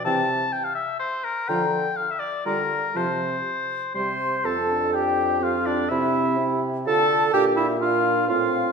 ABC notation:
X:1
M:3/4
L:1/16
Q:1/4=125
K:F
V:1 name="Flute"
g2 z8 z2 | b2 z6 b2 z2 | a2 z6 c'4 | a4 g4 f2 d2 |
e6 z2 a4 | g2 e2 f4 f4 |]
V:2 name="Oboe"
a4 g f e2 c2 B2 | g4 f e d2 B4 | c8 c'4 | a4 g4 f2 d2 |
e6 z2 a4 | g2 e2 f4 f4 |]
V:3 name="Clarinet"
C2 z8 z2 | F2 z6 F2 z2 | F2 z6 c4 | A4 G4 F2 D2 |
E6 z2 A4 | G2 E2 F4 F4 |]
V:4 name="French horn"
E,2 z8 z2 | F,2 z6 G,2 z2 | F,2 z6 G,2 z2 | C2 D6 C4 |
C4 G4 F4 | D4 D4 C4 |]
V:5 name="Bassoon" clef=bass
C,4 z8 | D,4 z4 D,4 | C,4 z4 C,4 | F,,12 |
C,8 D,4 | B,,8 A,,4 |]